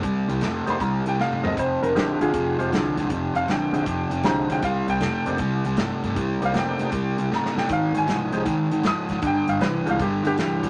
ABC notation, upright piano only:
X:1
M:4/4
L:1/8
Q:"Swing" 1/4=157
K:Cm
V:1 name="Upright piano"
z3 c' b g f e | c B G [FA]4 z | z f [^fg]4 b g | f g2 z4 z |
z f [^fg]4 b g | f a2 z3 e' z | g f =B f G [^FG]3 |]